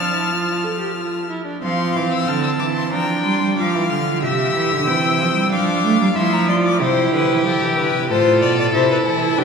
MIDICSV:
0, 0, Header, 1, 5, 480
1, 0, Start_track
1, 0, Key_signature, -1, "major"
1, 0, Tempo, 661521
1, 1179, Time_signature, 4, 2, 24, 8
1, 1655, Tempo, 645856
1, 6976, End_track
2, 0, Start_track
2, 0, Title_t, "Violin"
2, 0, Program_c, 0, 40
2, 0, Note_on_c, 0, 89, 94
2, 916, Note_off_c, 0, 89, 0
2, 1182, Note_on_c, 0, 84, 77
2, 1425, Note_on_c, 0, 86, 67
2, 1436, Note_off_c, 0, 84, 0
2, 1539, Note_off_c, 0, 86, 0
2, 1543, Note_on_c, 0, 88, 69
2, 1654, Note_on_c, 0, 89, 75
2, 1665, Note_off_c, 0, 88, 0
2, 1765, Note_off_c, 0, 89, 0
2, 1769, Note_on_c, 0, 88, 67
2, 1819, Note_off_c, 0, 88, 0
2, 1887, Note_on_c, 0, 86, 72
2, 1937, Note_off_c, 0, 86, 0
2, 2009, Note_on_c, 0, 84, 70
2, 2130, Note_off_c, 0, 84, 0
2, 2136, Note_on_c, 0, 82, 77
2, 2365, Note_off_c, 0, 82, 0
2, 2370, Note_on_c, 0, 84, 67
2, 2605, Note_off_c, 0, 84, 0
2, 2610, Note_on_c, 0, 86, 66
2, 2857, Note_on_c, 0, 89, 66
2, 2869, Note_off_c, 0, 86, 0
2, 3098, Note_off_c, 0, 89, 0
2, 3103, Note_on_c, 0, 88, 87
2, 4045, Note_off_c, 0, 88, 0
2, 4064, Note_on_c, 0, 86, 84
2, 4533, Note_off_c, 0, 86, 0
2, 4543, Note_on_c, 0, 84, 79
2, 4667, Note_on_c, 0, 82, 84
2, 4678, Note_off_c, 0, 84, 0
2, 4781, Note_off_c, 0, 82, 0
2, 4785, Note_on_c, 0, 84, 75
2, 4833, Note_off_c, 0, 84, 0
2, 4911, Note_on_c, 0, 86, 78
2, 5025, Note_off_c, 0, 86, 0
2, 5030, Note_on_c, 0, 72, 102
2, 5262, Note_off_c, 0, 72, 0
2, 5268, Note_on_c, 0, 71, 100
2, 5501, Note_off_c, 0, 71, 0
2, 5507, Note_on_c, 0, 69, 93
2, 5740, Note_off_c, 0, 69, 0
2, 5743, Note_on_c, 0, 71, 108
2, 5976, Note_off_c, 0, 71, 0
2, 5985, Note_on_c, 0, 72, 107
2, 6216, Note_off_c, 0, 72, 0
2, 6220, Note_on_c, 0, 74, 83
2, 6336, Note_off_c, 0, 74, 0
2, 6347, Note_on_c, 0, 74, 100
2, 6393, Note_off_c, 0, 74, 0
2, 6460, Note_on_c, 0, 72, 95
2, 6576, Note_off_c, 0, 72, 0
2, 6582, Note_on_c, 0, 71, 113
2, 6628, Note_off_c, 0, 71, 0
2, 6695, Note_on_c, 0, 69, 98
2, 6933, Note_on_c, 0, 67, 116
2, 6944, Note_off_c, 0, 69, 0
2, 6976, Note_off_c, 0, 67, 0
2, 6976, End_track
3, 0, Start_track
3, 0, Title_t, "Violin"
3, 0, Program_c, 1, 40
3, 0, Note_on_c, 1, 81, 79
3, 942, Note_off_c, 1, 81, 0
3, 1184, Note_on_c, 1, 77, 73
3, 1659, Note_on_c, 1, 81, 78
3, 1670, Note_off_c, 1, 77, 0
3, 2137, Note_off_c, 1, 81, 0
3, 2142, Note_on_c, 1, 79, 81
3, 2611, Note_off_c, 1, 79, 0
3, 2625, Note_on_c, 1, 77, 84
3, 3092, Note_off_c, 1, 77, 0
3, 3104, Note_on_c, 1, 76, 83
3, 3574, Note_off_c, 1, 76, 0
3, 3584, Note_on_c, 1, 79, 97
3, 4054, Note_off_c, 1, 79, 0
3, 4061, Note_on_c, 1, 77, 86
3, 4535, Note_on_c, 1, 76, 90
3, 4546, Note_off_c, 1, 77, 0
3, 4782, Note_on_c, 1, 74, 88
3, 4793, Note_off_c, 1, 76, 0
3, 5014, Note_off_c, 1, 74, 0
3, 5018, Note_on_c, 1, 67, 99
3, 5981, Note_on_c, 1, 69, 98
3, 5992, Note_off_c, 1, 67, 0
3, 6927, Note_off_c, 1, 69, 0
3, 6931, Note_on_c, 1, 71, 100
3, 6976, Note_off_c, 1, 71, 0
3, 6976, End_track
4, 0, Start_track
4, 0, Title_t, "Viola"
4, 0, Program_c, 2, 41
4, 0, Note_on_c, 2, 62, 58
4, 98, Note_off_c, 2, 62, 0
4, 103, Note_on_c, 2, 64, 57
4, 216, Note_on_c, 2, 65, 65
4, 227, Note_off_c, 2, 64, 0
4, 461, Note_on_c, 2, 69, 56
4, 472, Note_off_c, 2, 65, 0
4, 574, Note_off_c, 2, 69, 0
4, 578, Note_on_c, 2, 67, 58
4, 691, Note_off_c, 2, 67, 0
4, 696, Note_on_c, 2, 65, 63
4, 933, Note_off_c, 2, 65, 0
4, 941, Note_on_c, 2, 64, 60
4, 1056, Note_off_c, 2, 64, 0
4, 1060, Note_on_c, 2, 62, 59
4, 1175, Note_off_c, 2, 62, 0
4, 1180, Note_on_c, 2, 60, 89
4, 2107, Note_off_c, 2, 60, 0
4, 2137, Note_on_c, 2, 62, 76
4, 2619, Note_on_c, 2, 65, 68
4, 2630, Note_off_c, 2, 62, 0
4, 3099, Note_off_c, 2, 65, 0
4, 3102, Note_on_c, 2, 67, 85
4, 3582, Note_on_c, 2, 60, 77
4, 3593, Note_off_c, 2, 67, 0
4, 4045, Note_off_c, 2, 60, 0
4, 4050, Note_on_c, 2, 62, 75
4, 4526, Note_off_c, 2, 62, 0
4, 4535, Note_on_c, 2, 64, 74
4, 4779, Note_on_c, 2, 65, 87
4, 4790, Note_off_c, 2, 64, 0
4, 5014, Note_on_c, 2, 64, 97
4, 5025, Note_off_c, 2, 65, 0
4, 5977, Note_off_c, 2, 64, 0
4, 5984, Note_on_c, 2, 65, 99
4, 6449, Note_off_c, 2, 65, 0
4, 6458, Note_on_c, 2, 64, 90
4, 6929, Note_on_c, 2, 62, 114
4, 6940, Note_off_c, 2, 64, 0
4, 6976, Note_off_c, 2, 62, 0
4, 6976, End_track
5, 0, Start_track
5, 0, Title_t, "Cello"
5, 0, Program_c, 3, 42
5, 0, Note_on_c, 3, 53, 85
5, 936, Note_off_c, 3, 53, 0
5, 1180, Note_on_c, 3, 53, 98
5, 1417, Note_on_c, 3, 52, 83
5, 1428, Note_off_c, 3, 53, 0
5, 1652, Note_off_c, 3, 52, 0
5, 1656, Note_on_c, 3, 50, 87
5, 1892, Note_off_c, 3, 50, 0
5, 1898, Note_on_c, 3, 52, 84
5, 2139, Note_on_c, 3, 53, 82
5, 2150, Note_off_c, 3, 52, 0
5, 2373, Note_off_c, 3, 53, 0
5, 2377, Note_on_c, 3, 55, 87
5, 2495, Note_off_c, 3, 55, 0
5, 2502, Note_on_c, 3, 55, 86
5, 2618, Note_off_c, 3, 55, 0
5, 2624, Note_on_c, 3, 53, 91
5, 2747, Note_on_c, 3, 52, 97
5, 2758, Note_off_c, 3, 53, 0
5, 2863, Note_off_c, 3, 52, 0
5, 2866, Note_on_c, 3, 50, 86
5, 3107, Note_on_c, 3, 48, 100
5, 3118, Note_off_c, 3, 50, 0
5, 3339, Note_off_c, 3, 48, 0
5, 3343, Note_on_c, 3, 52, 83
5, 3464, Note_on_c, 3, 50, 91
5, 3475, Note_off_c, 3, 52, 0
5, 3587, Note_on_c, 3, 52, 98
5, 3598, Note_off_c, 3, 50, 0
5, 3829, Note_on_c, 3, 53, 91
5, 3840, Note_off_c, 3, 52, 0
5, 3939, Note_off_c, 3, 53, 0
5, 3943, Note_on_c, 3, 55, 87
5, 4065, Note_on_c, 3, 53, 98
5, 4076, Note_off_c, 3, 55, 0
5, 4303, Note_off_c, 3, 53, 0
5, 4307, Note_on_c, 3, 57, 102
5, 4417, Note_off_c, 3, 57, 0
5, 4422, Note_on_c, 3, 55, 94
5, 4470, Note_off_c, 3, 55, 0
5, 4543, Note_on_c, 3, 53, 101
5, 5023, Note_on_c, 3, 48, 90
5, 5034, Note_off_c, 3, 53, 0
5, 5258, Note_off_c, 3, 48, 0
5, 5262, Note_on_c, 3, 50, 82
5, 5378, Note_off_c, 3, 50, 0
5, 5382, Note_on_c, 3, 52, 74
5, 5494, Note_off_c, 3, 52, 0
5, 5498, Note_on_c, 3, 53, 85
5, 5547, Note_off_c, 3, 53, 0
5, 5622, Note_on_c, 3, 52, 78
5, 5742, Note_on_c, 3, 50, 81
5, 5753, Note_off_c, 3, 52, 0
5, 5856, Note_off_c, 3, 50, 0
5, 5861, Note_on_c, 3, 48, 81
5, 5980, Note_on_c, 3, 45, 79
5, 5991, Note_off_c, 3, 48, 0
5, 6216, Note_on_c, 3, 47, 87
5, 6227, Note_off_c, 3, 45, 0
5, 6449, Note_off_c, 3, 47, 0
5, 6453, Note_on_c, 3, 48, 81
5, 6689, Note_off_c, 3, 48, 0
5, 6694, Note_on_c, 3, 52, 90
5, 6932, Note_on_c, 3, 50, 103
5, 6943, Note_off_c, 3, 52, 0
5, 6976, Note_off_c, 3, 50, 0
5, 6976, End_track
0, 0, End_of_file